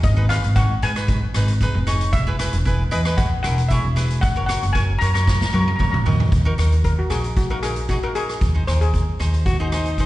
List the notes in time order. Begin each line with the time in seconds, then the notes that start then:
0.03 G#1 D#5, kick, closed hi-hat
0.16 D#4 G#4 B4
0.29 D#4 G#4 B4 F5, cross-stick, closed hi-hat
0.44 G#1, closed hi-hat
0.56 D#4 G#4 C#5 F#5, kick, closed hi-hat
0.82 G#2 D#4 G#4 B4 G#5, closed hi-hat
0.96 D#4 G#4 B4, cross-stick, closed hi-hat
1.08 kick, closed hi-hat
1.34 G#1 D#4 G#4 B4, cross-stick, closed hi-hat
1.48 closed hi-hat
1.61 D#4 G#4 B4, kick, closed hi-hat
1.75 F1
1.87 D#4 G#4 C#5, cross-stick, closed hi-hat
2.01 closed hi-hat
2.13 E1 E5, kick, closed hi-hat
2.27 E4 G#4 B4
2.39 E4 G#4 B4, cross-stick, closed hi-hat
2.53 E1, closed hi-hat
2.65 E4 G#4 B4, kick, closed hi-hat
2.91 E2 E4 G#4 B4 D#5, closed hi-hat
3.05 E4 G#4 B4, cross-stick, closed hi-hat
3.17 F#5, kick, closed hi-hat
3.43 E1 E4 G#4 A#4 F#5, cross-stick, closed hi-hat
3.58 closed hi-hat
3.69 E4 G#4 C#5 E5, kick, closed hi-hat
3.84 E1
3.96 E4 G#4 B4, cross-stick, closed hi-hat
4.10 closed hi-hat
4.21 F#1 F#5, kick, closed hi-hat
4.36 F#4 A#4 C#5
4.46 F#4 A#4 C#5 F#5, cross-stick, closed hi-hat
4.63 F#1, closed hi-hat
4.73 F#4 A#4 C#5 G#5, kick, closed hi-hat
4.99 F#2 F#4 A#4 C#5 A#5, closed hi-hat
5.07 A#5
5.14 F#4 A#4 C#5 A#5, cross-stick, closed hi-hat
5.22 A#5
5.27 A#5, kick, snare
5.38 A#5, snare
5.46 A#5
5.53 F#2 F#4 A#4 C#5 A#5, high tom
5.61 A#5
5.68 A#5, high tom
5.76 F2 F#4 A#4 A#5, kick
5.80 C#5 A#5, mid tom
5.91 A#5, mid tom
6.06 D#2 F#4 A#4 D#5, floor tom
6.20 floor tom
6.32 D#2, kick, closed hi-hat
6.45 D#4 F#4 A#4
6.58 D#2 D#4 F#4 A#4, cross-stick, closed hi-hat
6.72 closed hi-hat
6.84 A#4, kick, closed hi-hat
6.99 F#4
7.10 A#1 D#4 F#4 G#4 A#4, cross-stick, closed hi-hat
7.24 closed hi-hat
7.37 F#4, kick, closed hi-hat
7.50 D#4 F#4 A#4
7.63 D#4 F#4 G#4 A#4, cross-stick, closed hi-hat
7.76 closed hi-hat
7.89 D#4 F#4 G#4, kick, closed hi-hat
8.03 D#4 F#4 A#4
8.15 D#4 F#4 G#4 A#4, closed hi-hat
8.29 cross-stick, closed hi-hat
8.41 D#2, kick, closed hi-hat
8.55 D#4 G#4 C5
8.67 D#2 D#4 G#4 A#4 C5, cross-stick, closed hi-hat
8.81 G#4, closed hi-hat
8.94 kick, closed hi-hat
9.19 D#2 D#4 G#4 C5, cross-stick, closed hi-hat
9.34 closed hi-hat
9.46 F#4, kick, closed hi-hat
9.60 D#4 G#4 C5
9.72 D#4 G#4 C5, cross-stick, closed hi-hat
9.86 closed hi-hat
9.98 D#4 G#4 C5, kick, closed hi-hat